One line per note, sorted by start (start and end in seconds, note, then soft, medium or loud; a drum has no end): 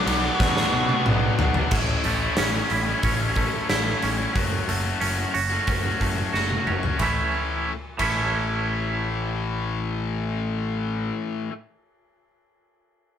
0.00 0.34 D5 medium
0.04 0.29 B1 medium
0.04 0.36 B2 medium
0.04 0.24 F#3 medium
0.04 0.22 B3 medium
0.04 0.19 D4 medium
0.04 ride medium
0.20 0.38 B3 medium
0.20 0.39 D4 medium
0.25 0.37 F#3 medium
0.34 0.88 B2 medium
0.34 1.03 C#5 medium
0.38 0.62 E2 medium
0.38 0.56 F#3 medium
0.38 0.55 B3 medium
0.38 0.53 D4 medium
0.38 kick loud
0.38 snare medium
0.54 0.89 F#3 medium
0.54 0.87 B3 medium
0.54 0.86 D4 medium
0.54 snare medium
0.72 1.04 B2 medium
0.72 0.95 B2 medium
0.72 0.90 F#3 medium
0.72 0.89 B3 medium
0.72 0.87 D4 medium
0.87 1.03 F#3 medium
0.87 1.05 B3 medium
0.87 1.05 D4 medium
0.87 high tom medium
1.03 1.28 B1 medium
1.03 1.36 B2 loud
1.03 1.38 F#3 medium
1.03 1.39 B3 loud
1.03 1.40 D4 loud
1.03 mid tom medium
1.37 1.62 B1 medium
1.37 1.69 B2 medium
1.37 1.56 F#3 medium
1.37 1.55 B3 medium
1.37 floor tom loud
1.41 1.53 D4 medium
1.54 1.71 F#3 medium
1.54 1.70 B3 medium
1.54 1.69 D4 medium
1.54 floor tom medium
1.70 1.94 A1 medium
1.70 2.35 A2 medium
1.70 2.03 E3 medium
1.70 2.05 A3 medium
1.70 2.06 C#4 medium
1.70 2.06 E4 medium
1.70 kick loud
1.70 crash medium
2.04 2.27 A1 medium
2.04 2.36 E3 medium
2.04 2.24 A3 medium
2.04 2.22 C#4 medium
2.04 2.19 E4 medium
2.04 open hi-hat soft
2.20 2.38 A3 medium
2.20 2.39 C#4 medium
2.20 2.38 E4 medium
2.36 2.60 A1 medium
2.36 2.86 A2 medium
2.36 2.69 E3 medium
2.36 2.55 A3 medium
2.36 2.54 C#4 medium
2.36 2.51 E4 loud
2.36 snare loud
2.36 open hi-hat medium
2.52 2.70 A3 medium
2.52 2.70 C#4 medium
2.52 2.69 E4 medium
2.70 2.93 A1 medium
2.70 3.68 E4 medium
2.70 muted distorted electric guitar stroke soft
2.70 open hi-hat soft
2.85 3.20 C#4 medium
2.85 3.17 E4 medium
2.89 3.22 A3 medium
3.03 3.48 A1 medium
3.03 4.03 C#4 medium
3.03 kick loud
3.03 open hi-hat medium
3.19 3.36 A3 medium
3.19 3.37 C#4 medium
3.19 3.37 E4 medium
3.35 3.69 E3 medium
3.35 3.70 A3 medium
3.35 3.71 C#4 medium
3.35 3.71 E4 medium
3.35 kick medium
3.35 open hi-hat soft
3.69 3.92 A1 medium
3.69 4.19 A2 medium
3.69 4.19 E3 medium
3.69 3.88 A3 medium
3.69 3.86 C#4 medium
3.69 3.84 E4 medium
3.69 snare medium
3.69 open hi-hat medium
3.85 4.20 A3 medium
3.85 4.18 C#4 medium
3.85 4.16 E4 medium
4.02 4.25 A1 medium
4.02 5.00 C#4 medium
4.02 open hi-hat soft
4.17 4.34 A3 medium
4.17 4.35 C#4 medium
4.17 4.32 E4 medium
4.33 4.58 F#1 medium
4.33 6.01 F#2 medium
4.33 4.65 F#3 medium
4.33 4.67 A3 medium
4.33 4.68 C#4 medium
4.33 4.69 F#4 medium
4.33 kick loud
4.33 open hi-hat medium
4.66 4.91 F#1 medium
4.66 4.98 F#3 medium
4.66 4.86 A3 medium
4.66 4.84 C#4 medium
4.66 4.82 F#4 medium
4.66 open hi-hat soft
4.84 5.00 A3 medium
4.84 5.01 C#4 medium
4.84 5.02 F#4 medium
5.00 5.24 F#1 medium
5.00 5.32 F#3 medium
5.00 5.19 A3 medium
5.00 5.17 C#4 medium
5.00 5.16 F#4 medium
5.00 open hi-hat medium
5.17 5.32 A3 medium
5.17 5.33 C#4 medium
5.17 5.32 F#4 medium
5.33 5.58 F#1 medium
5.33 6.32 F#4 medium
5.33 muted distorted electric guitar stroke soft
5.33 open hi-hat soft
5.50 5.85 A3 medium
5.50 5.84 C#4 medium
5.50 5.81 F#4 medium
5.67 5.90 F#1 medium
5.67 6.66 C#4 medium
5.67 kick loud
5.67 open hi-hat medium
5.83 5.99 A3 medium
5.83 6.00 C#4 medium
5.83 6.02 F#4 medium
5.99 6.23 F#1 medium
5.99 6.32 F#3 medium
5.99 6.33 A3 medium
5.99 6.35 C#4 medium
5.99 6.35 F#4 medium
5.99 kick medium
5.99 open hi-hat soft
6.33 6.56 F#1 medium
6.33 6.83 F#3 medium
6.33 6.52 A3 medium
6.33 6.51 C#4 medium
6.33 6.49 F#4 medium
6.33 snare soft
6.50 6.85 A3 medium
6.50 6.83 C#4 medium
6.50 6.81 F#4 medium
6.50 high tom medium
6.66 6.89 F#1 medium
6.66 7.00 C#4 medium
6.66 mid tom medium
6.82 6.99 A3 soft
6.82 6.98 C#4 medium
6.82 6.97 F#4 medium
6.82 floor tom medium
6.99 7.18 A1 medium
6.99 7.71 A2 medium
6.99 7.71 E3 medium
6.99 7.71 A3 medium
6.99 7.71 C#4 medium
6.99 7.71 E4 loud
6.99 kick medium
6.99 ride medium
7.99 11.11 A1 medium
7.99 11.49 A2 medium
7.99 11.51 E3 medium
7.99 11.53 A3 medium
7.99 11.50 C#4 loud
7.99 11.52 E4 medium
7.99 kick medium
7.99 ride medium